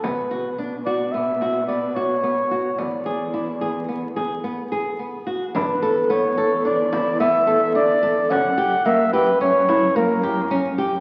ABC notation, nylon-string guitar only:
X:1
M:5/4
L:1/8
Q:1/4=109
K:Emix
V:1 name="Nylon-string guitar"
B, F D F B, F B, F B, F | B, G E G B, G B, G B, F | D A B, A D E B, A D A | C =G ^A, G C E A, G C G |]